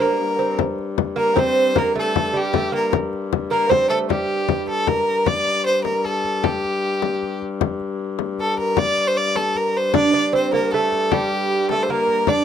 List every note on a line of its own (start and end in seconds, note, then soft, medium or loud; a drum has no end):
0.00 0.58 G2 medium
0.00 0.38 A#3 medium
0.00 0.59 A#4 medium
0.39 0.57 C4 medium
0.58 5.27 G2 medium
0.58 frame drum medium
0.78 frame drum soft
0.98 frame drum medium
1.16 1.35 A#3 medium
1.16 1.40 A#4 medium
1.16 frame drum soft
1.36 1.75 C4 medium
1.36 1.79 C5 loud
1.36 frame drum medium
1.75 1.95 A#3 medium
1.75 1.96 A#4 medium
1.75 frame drum medium
1.95 2.36 A3 medium
1.95 2.38 A4 medium
1.95 frame drum soft
2.16 frame drum medium
2.33 2.54 G3 medium
2.33 2.74 G4 medium
2.33 frame drum soft
2.53 2.72 A3 medium
2.53 frame drum medium
2.72 2.91 A#3 medium
2.72 2.92 A#4 medium
2.93 frame drum medium
3.13 frame drum soft
3.33 frame drum medium
3.51 3.69 A#3 medium
3.51 3.71 A#4 loud
3.51 frame drum soft
3.69 3.90 C4 medium
3.69 3.89 C5 loud
3.69 frame drum medium
3.89 4.10 A3 medium
3.89 3.98 A4 medium
4.09 4.84 G3 medium
4.09 4.64 G4 medium
4.09 frame drum medium
4.49 frame drum medium
4.67 4.89 A4 medium
4.67 frame drum soft
4.87 5.28 A#4 medium
4.87 frame drum medium
5.26 9.95 G2 medium
5.26 5.65 D5 loud
5.26 frame drum medium
5.46 frame drum soft
5.66 5.83 C5 medium
5.84 6.06 A#4 medium
5.84 frame drum medium
6.04 6.45 A4 medium
6.04 frame drum soft
6.24 frame drum soft
6.43 7.41 G4 medium
6.43 frame drum medium
6.64 frame drum soft
7.02 frame drum medium
7.23 frame drum soft
7.42 frame drum soft
7.61 frame drum medium
7.80 frame drum soft
8.19 frame drum medium
8.38 8.58 A4 medium
8.38 frame drum soft
8.58 8.79 A#4 medium
8.58 frame drum soft
8.77 9.09 D5 loud
8.77 frame drum medium
8.98 frame drum soft
9.07 9.19 C5 medium
9.17 9.37 D5 loud
9.35 9.58 A4 medium
9.35 frame drum medium
9.55 9.78 A#4 medium
9.55 frame drum soft
9.77 9.95 C5 medium
9.94 12.44 G2 medium
9.94 10.13 D4 medium
9.94 10.31 D5 loud
9.94 frame drum medium
10.13 10.34 D4 medium
10.13 frame drum soft
10.33 10.53 C4 medium
10.33 10.53 C5 medium
10.53 10.73 A#3 medium
10.53 10.71 A#4 medium
10.53 frame drum medium
10.72 11.13 A3 medium
10.72 11.13 A4 medium
10.72 frame drum soft
10.92 frame drum soft
11.12 11.73 G3 medium
11.12 11.70 G4 loud
11.12 frame drum medium
11.69 11.89 A3 medium
11.69 11.84 A4 medium
11.69 frame drum medium
11.83 11.92 C5 medium
11.89 12.30 A#3 medium
11.89 12.30 A#4 loud
11.89 frame drum soft
12.08 frame drum soft
12.27 12.44 D4 medium
12.27 12.44 D5 loud
12.27 frame drum medium